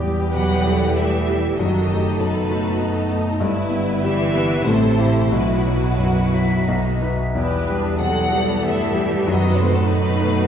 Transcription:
Already playing: double bass section E2, grand piano E2, french horn section G3 E4, viola section G4, violin section G4 B4
0.03 grand piano G3
0.32 grand piano B2, cello section F#3, viola section B4, violin section F#5
0.64 grand piano G3, viola section A4
0.96 cello section E3, grand piano A3, viola section G4, violin section E5
1.29 grand piano G3
1.59 double bass section F#1, grand piano F#2, cello section D#3, french horn section A3 D#4, violin section D#4 A4 D#5, viola section F#4
1.90 grand piano A3, viola section G4
2.19 cello section B2, grand piano F#3, viola section A4, violin section B4
2.50 grand piano A3, viola section F#4
2.79 grand piano B3, viola section D#4
3.10 grand piano A3
3.40 double bass section G1, grand piano G2, french horn section G3 E4, viola section E4, violin section E4 B4
3.69 grand piano B3
4.03 cello section E3, grand piano G3, viola section G4, violin section E5
4.35 grand piano B3, viola section B4
4.65 double bass section A1, grand piano A2, cello section C3, french horn section E3, violin section A4 C5, viola section A4
4.98 grand piano E4 E5, viola section G4
5.31 grand piano B1, double bass section B1, cello section B2, french horn section F#3, viola section F#4, violin section F#4 B4
5.66 grand piano F#3
5.97 grand piano F#2, flute F#5
6.33 grand piano F#3, flute E5
6.68 grand piano B1, french horn section D#4, violin section D#4, flute D#5
7.02 grand piano D#4 B4, flute E5
7.35 grand piano E2, double bass section E2, french horn section G3 E4, violin section E4 G4, viola section B4
7.68 grand piano G3, violin section D4
7.99 grand piano B2, cello section F#3, violin section C4 A4 F#5, viola section A4
8.32 grand piano G3, violin section B3, viola section G4
8.64 double bass section G2, cello section E3, grand piano A3, viola section A4, violin section E5
8.94 grand piano G3, viola section G4
9.27 grand piano F#2, double bass section F#2, cello section D#3, french horn section A3 D#4, viola section F#4, violin section B4 D#5
9.58 cello section C3, grand piano A3, violin section C5
9.74 cello section A2, violin section A4
9.88 cello section B2, grand piano F#3, viola section D#4, violin section F#4 B4
10.20 grand piano A3

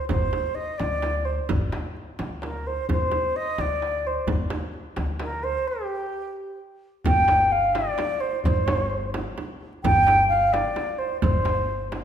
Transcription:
0.09 upright bass G1, flute C5, frame drum, tombak dum
0.33 frame drum
0.55 flute D#5, tombak ka
0.78 upright bass D2, flute D5, tombak tek, frame drum
1.02 tombak tek, frame drum
1.25 flute C5, tombak ka
1.39 tombak ka
1.49 upright bass G1, frame drum, tombak dum
1.72 tombak tek, frame drum
1.96 tombak ka
2.19 upright bass D2, tombak tek, frame drum
2.42 flute A#4, tombak tek, frame drum
2.66 flute C5, tombak ka
2.89 upright bass G1, flute C5, tombak dum, frame drum
3.12 frame drum
3.36 flute D#5, tombak ka
3.58 upright bass D2, flute D5, tombak tek, frame drum
3.82 tombak tek
4.05 flute C5, tombak ka
4.27 upright bass G1, tombak dum, frame drum
4.50 tombak tek, frame drum
4.74 tombak ka
4.96 upright bass D2, tombak tek, frame drum
5.20 flute A#4, tombak tek, frame drum
5.43 flute C5, tombak ka
5.68 flute G4
7.05 upright bass G1, flute G5, tombak dum, frame drum
7.28 tombak tek, frame drum
7.52 flute F5
7.73 flute D5, tombak tek, frame drum
7.98 tombak tek, frame drum
8.20 flute C5
8.33 tombak ka
8.43 upright bass G1, flute C5, tombak dum, frame drum
8.68 tombak tek, frame drum
9.14 tombak tek, frame drum
9.38 frame drum
9.73 tombak ka
9.84 upright bass G1, flute G5, tombak dum, frame drum
10.07 tombak tek, frame drum
10.29 flute F5
10.53 flute D5, tombak tek, frame drum
10.76 tombak tek, frame drum
10.98 flute C5
11.12 tombak ka
11.22 upright bass G1, flute C5, frame drum, tombak dum
11.45 tombak tek, frame drum
11.70 tombak ka
11.92 tombak tek, frame drum

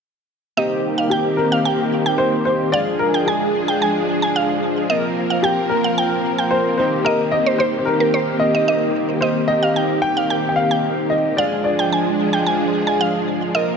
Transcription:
0.57 string machine D#3 A#3 C4 G4, analog polysynth A#3 C4 D#4 G4, synth pluck D#5
0.98 synth pluck F5
1.10 grand piano G4, synth pluck G5
1.37 grand piano A#4
1.52 synth pluck F5
1.65 synth pluck G5
2.06 synth pluck G5
2.18 grand piano C5
2.45 grand piano C5
2.72 string machine F3 G#3 D4 G#4, analog polysynth G#3 D4 F4 G#4, grand piano D5, synth pluck F5
2.99 grand piano A#4
3.14 synth pluck G5
3.26 grand piano G#4, synth pluck G#5
3.68 synth pluck G5
3.82 synth pluck G#5
4.22 synth pluck G#5
4.36 synth pluck F5
4.89 analog polysynth A#3 C4 F4 A#4, string machine A#3 C4 A#4, synth pluck D#5
5.30 synth pluck F5
5.42 grand piano G4, synth pluck G5
5.69 grand piano A#4
5.84 synth pluck F5
5.98 synth pluck G5
6.38 synth pluck G5
6.51 grand piano C5
6.78 string machine D#3 G4, analog polysynth A#3 C4 D#4 G4, grand piano C5
7.05 grand piano A#4, synth pluck D#5
7.32 grand piano D#5
7.46 synth pluck C5
7.58 grand piano C5, synth pluck C5
7.78 grand piano C5
7.85 grand piano A#4
8.00 synth pluck A#4
8.14 synth pluck C5
8.40 grand piano D#5
8.55 synth pluck D#5
8.68 synth pluck D#5
9.21 analog polysynth A#3 C4 D#4 G4, string machine G4, grand piano C5, synth pluck D#5
9.48 grand piano D#5
9.63 synth pluck F5
9.76 synth pluck G5
10.02 grand piano G5
10.17 synth pluck F5
10.30 synth pluck G5
10.49 grand piano G5
10.56 grand piano F5
10.71 synth pluck G5
11.10 grand piano D#5
11.37 string machine F3 G#3 D4 G#4, analog polysynth G#3 D4 F4 G#4, grand piano D5, synth pluck F5
11.64 grand piano D5
11.79 synth pluck G5
11.93 synth pluck G#5
12.33 synth pluck G5
12.46 synth pluck G#5
12.87 synth pluck G#5
13.01 synth pluck F5
13.54 string machine F3 A#3 C4 A#4, analog polysynth A#3 C4 F4 A#4, synth pluck D#5

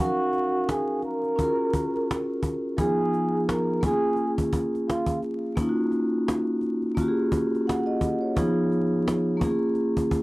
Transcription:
Already playing: vibraphone C#4 F5
0.00 vibraphone D#4 F#4 A#4, flugelhorn F#4
0.33 cajon slap
0.69 flugelhorn G#4, cajon slap
1.02 flugelhorn A#4, cajon slap
1.23 cajon slap
1.36 vibraphone C#4 F4 F#4, cajon bass
1.41 vibraphone G#4 A#4
1.74 cajon bass
1.94 cajon slap
1.96 cajon slap
2.11 cajon slap
2.43 cajon bass
2.77 vibraphone F3 B3 D#4 F4 G#4, flugelhorn G#4, cajon bass
3.13 cajon slap
3.49 flugelhorn A#4, cajon slap
3.81 vibraphone A#3 C#4, cajon bass
3.85 vibraphone F4 G#4, flugelhorn G#4
4.03 cajon slap
4.16 cajon slap
4.38 cajon bass
4.53 cajon bass
4.73 cajon slap
4.75 cajon slap
4.90 flugelhorn F4, cajon slap
5.06 cajon bass
5.23 cajon slap
5.56 vibraphone A#3 C#4, cajon bass
5.60 vibraphone D#4 F4
5.69 vibraphone F#4
5.92 cajon slap
6.28 cajon slap
6.61 cajon slap
6.82 cajon slap
6.95 vibraphone A#3 C#4 F4, cajon bass
7.00 vibraphone F#4 G4
7.08 vibraphone G#4
7.32 cajon bass
7.53 cajon slap
7.55 cajon slap
7.67 vibraphone F#5, cajon slap
7.86 vibraphone D#5
8.01 cajon bass
8.21 vibraphone C#5
8.35 vibraphone F3 B3 D#4 F4 G#4, cajon bass
8.72 cajon slap
9.08 cajon slap
9.37 vibraphone A#3 C#4, cajon bass
9.42 vibraphone F4 G#4
9.75 cajon slap
9.97 cajon bass
10.11 cajon bass

